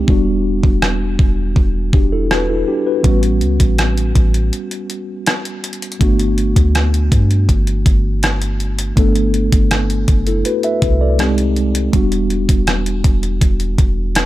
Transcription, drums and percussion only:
0.08 kick loud
0.63 kick medium
0.82 cross-stick medium
1.19 kick medium
1.56 kick medium
1.93 kick loud
2.31 cross-stick loud
3.04 kick loud
3.04 closed hi-hat medium
3.23 closed hi-hat soft
3.41 closed hi-hat soft
3.60 kick medium
3.60 closed hi-hat medium
3.78 cross-stick medium
3.78 closed hi-hat medium
3.98 closed hi-hat soft
4.15 kick medium
4.15 closed hi-hat medium
4.34 closed hi-hat soft
4.53 closed hi-hat medium
4.71 closed hi-hat soft
4.90 closed hi-hat medium
5.26 cross-stick loud
5.26 closed hi-hat medium
5.45 closed hi-hat soft
5.64 closed hi-hat medium
5.73 closed hi-hat medium
5.82 closed hi-hat medium
5.92 closed hi-hat medium
6.01 kick loud
6.01 closed hi-hat medium
6.19 closed hi-hat soft
6.38 closed hi-hat soft
6.56 kick medium
6.56 closed hi-hat medium
6.75 cross-stick medium
6.75 closed hi-hat medium
6.94 closed hi-hat medium
7.12 kick loud
7.12 closed hi-hat medium
7.31 closed hi-hat soft
7.49 kick medium
7.49 closed hi-hat medium
7.67 closed hi-hat soft
7.86 kick loud
7.86 closed hi-hat medium
8.23 cross-stick loud
8.23 closed hi-hat medium
8.42 closed hi-hat medium
8.60 closed hi-hat soft
8.79 closed hi-hat medium
8.97 kick loud
8.97 closed hi-hat medium
9.16 closed hi-hat soft
9.34 closed hi-hat soft
9.52 kick medium
9.52 closed hi-hat medium
9.71 cross-stick loud
9.71 closed hi-hat medium
9.90 closed hi-hat soft
10.08 kick loud
10.08 closed hi-hat medium
10.27 closed hi-hat soft
10.45 closed hi-hat medium
10.63 closed hi-hat soft
10.82 kick loud
10.82 closed hi-hat medium
11.19 cross-stick loud
11.19 closed hi-hat medium
11.38 closed hi-hat soft
11.56 closed hi-hat soft
11.75 closed hi-hat medium
11.93 kick loud
11.93 closed hi-hat medium
12.12 closed hi-hat medium
12.30 closed hi-hat soft
12.49 kick medium
12.49 closed hi-hat medium
12.67 cross-stick medium
12.67 closed hi-hat medium
12.86 closed hi-hat medium
13.04 kick loud
13.04 closed hi-hat medium
13.23 closed hi-hat soft
13.41 kick medium
13.41 closed hi-hat medium
13.60 closed hi-hat soft
13.78 kick medium
13.78 closed hi-hat medium
14.15 cross-stick loud
14.15 closed hi-hat medium

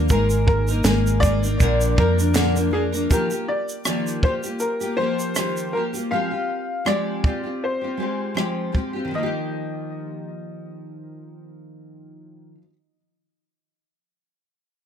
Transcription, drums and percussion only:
0.09 kick loud
0.09 shaker medium
0.30 shaker medium
0.48 kick loud
0.68 shaker soft
0.84 snare loud
0.84 clap medium
0.84 shaker medium
1.07 shaker medium
1.23 kick loud
1.23 shaker medium
1.44 shaker soft
1.60 kick medium
1.60 shaker medium
1.81 shaker soft
1.98 kick loud
2.19 shaker medium
2.35 snare loud
2.35 clap medium
2.35 shaker medium
2.56 shaker medium
2.94 shaker medium
3.11 kick medium
3.11 shaker medium
3.31 shaker soft
3.69 shaker soft
3.85 cross-stick loud
3.85 shaker medium
4.07 shaker soft
4.23 kick medium
4.43 shaker soft
4.60 shaker soft
4.81 shaker soft
5.19 shaker soft
5.35 cross-stick medium
5.35 shaker medium
5.57 shaker soft
5.94 shaker soft
6.86 cross-stick loud
7.24 kick medium
8.37 cross-stick medium
8.75 kick medium

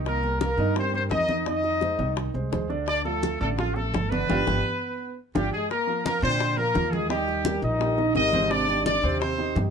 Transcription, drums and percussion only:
0.06 high bongo medium
0.06 high conga soft
0.23 high conga soft
0.41 high bongo medium
0.41 high conga medium
0.59 high conga soft
0.76 high bongo medium
0.76 high conga soft
0.94 high conga soft
1.11 high bongo medium
1.11 low bongo medium
1.11 high conga medium
1.29 high conga medium
1.46 high bongo medium
1.46 high conga soft
1.64 high bongo soft
1.64 high conga soft
1.81 high bongo medium
1.81 high conga medium
1.99 high bongo soft
1.99 high conga soft
2.17 high bongo medium
2.17 high conga soft
2.35 high conga soft
2.53 high bongo medium
2.53 low bongo medium
2.53 high conga medium
2.70 high bongo soft
2.70 high conga soft
2.88 high bongo medium
2.88 high conga soft
3.05 high conga soft
3.23 high bongo medium
3.23 high conga medium
3.41 high conga soft
3.59 high bongo medium
3.59 high conga soft
3.76 high conga soft
3.94 high bongo medium
3.94 low bongo medium
3.94 high conga medium
4.12 high conga medium
4.29 low bongo medium
4.29 high conga medium
4.47 low bongo loud
4.47 high conga loud
5.36 low bongo loud
5.36 high conga medium
5.70 high bongo medium
5.70 high conga soft
5.88 high bongo soft
5.88 high conga soft
6.05 high bongo medium
6.05 high conga loud
6.23 high bongo soft
6.23 high conga soft
6.41 high bongo medium
6.41 high conga soft
6.58 high bongo soft
6.58 high conga soft
6.75 high bongo soft
6.75 low bongo medium
6.75 high conga medium
6.93 high conga medium
7.10 high bongo medium
7.10 high conga soft
7.28 high bongo soft
7.28 high conga soft
7.45 high bongo medium
7.45 high conga loud
7.63 high bongo soft
7.63 high conga soft
7.81 high bongo medium
7.81 high conga soft
7.98 high bongo soft
7.98 high conga soft
8.15 high bongo soft
8.15 low bongo medium
8.15 high conga soft
8.33 high conga medium
8.51 high bongo medium
8.51 high conga soft
8.69 high bongo soft
8.69 high conga soft
8.86 high bongo medium
8.86 high conga medium
9.04 high bongo soft
9.04 high conga soft
9.21 high bongo medium
9.21 high conga soft
9.38 high bongo soft
9.38 high conga soft
9.56 high bongo soft
9.56 low bongo medium
9.56 high conga medium

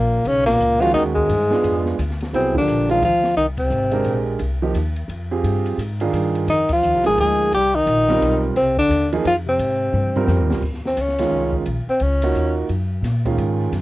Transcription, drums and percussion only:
0.25 ride medium
0.46 snare medium
0.46 ride medium
0.60 hi-hat pedal medium
0.82 ride soft
0.95 snare soft
0.95 ride medium
1.16 kick soft
1.29 ride medium
1.51 snare medium
1.64 ride medium
1.86 snare soft
1.99 hi-hat pedal medium
1.99 ride medium
2.10 snare soft
2.20 snare soft
2.20 ride soft
2.34 snare soft
2.34 ride medium
2.54 kick medium
2.68 hi-hat pedal soft
2.68 ride medium
2.89 ride soft
3.02 ride medium
3.24 snare soft
3.37 ride medium
3.57 kick medium
3.57 ride medium
3.70 hi-hat pedal medium
3.91 ride soft
4.04 ride soft
4.39 ride medium
4.74 hi-hat pedal soft
4.74 ride medium
4.96 ride soft
5.09 ride soft
5.44 ride medium
5.66 ride soft
5.79 hi-hat pedal medium
5.79 ride medium
6.00 ride soft
6.13 hi-hat pedal medium
6.13 ride medium
6.35 ride soft
6.48 ride medium
6.69 kick medium
6.69 ride medium
6.83 hi-hat pedal medium
7.04 snare soft
7.04 ride soft
7.18 ride medium
7.52 ride medium
7.87 hi-hat pedal soft
7.87 ride medium
8.08 snare medium
8.08 ride soft
8.22 hi-hat pedal medium
8.22 ride medium
8.56 ride medium
8.77 kick medium
8.91 hi-hat pedal medium
8.91 ride medium
9.12 ride soft
9.25 ride medium
9.59 ride medium
9.94 floor tom soft
10.16 floor tom medium
10.28 snare medium
10.28 hi-hat pedal medium
10.51 snare medium
10.62 kick medium
10.62 crash medium
10.74 snare soft
10.86 snare soft
10.97 hi-hat pedal medium
10.97 ride medium
11.08 snare soft
11.19 snare soft
11.19 ride medium
11.53 kick medium
11.66 ride soft
12.00 ride soft
12.22 ride medium
12.34 hi-hat pedal medium
12.69 ride soft
13.04 snare soft
13.04 hi-hat pedal medium
13.04 ride medium
13.25 kick soft
13.25 ride soft
13.38 ride medium
13.73 snare soft
13.73 ride medium

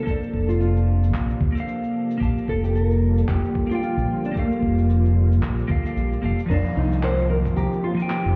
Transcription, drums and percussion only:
0.07 kick loud
0.07 cabasa medium
0.23 cabasa soft
0.34 kick medium
0.50 cabasa medium
0.61 cabasa medium
0.77 cabasa soft
1.04 cabasa medium
1.14 kick loud
1.14 clap medium
1.14 cabasa medium
1.30 cabasa soft
1.41 kick medium
1.57 cabasa medium
1.68 cabasa soft
1.84 cabasa soft
2.11 cabasa medium
2.21 kick loud
2.21 cabasa medium
2.38 cabasa soft
2.48 kick medium
2.64 cabasa medium
2.76 cabasa soft
2.91 cabasa soft
3.18 cabasa medium
3.28 kick loud
3.28 clap medium
3.28 cabasa soft
3.45 cabasa soft
3.55 kick medium
3.71 cabasa medium
3.83 cabasa soft
3.98 cabasa soft
4.25 cabasa medium
4.36 kick loud
4.36 cabasa medium
4.52 cabasa soft
4.63 kick medium
4.78 cabasa medium
4.90 cabasa soft
5.05 cabasa soft
5.32 cabasa medium
5.43 kick loud
5.43 clap medium
5.43 cabasa medium
5.59 cabasa soft
5.69 kick loud
5.86 cabasa medium
5.97 cabasa medium
6.13 cabasa soft
6.39 cabasa medium
6.50 kick loud
6.50 cabasa medium
6.66 cabasa soft
6.93 cabasa medium
7.03 clap loud
7.03 cabasa medium
7.19 cabasa soft
7.45 kick loud
7.45 cabasa medium
7.57 cabasa medium
7.73 cabasa soft
7.99 cabasa medium
8.10 clap loud
8.10 cabasa medium
8.26 cabasa soft

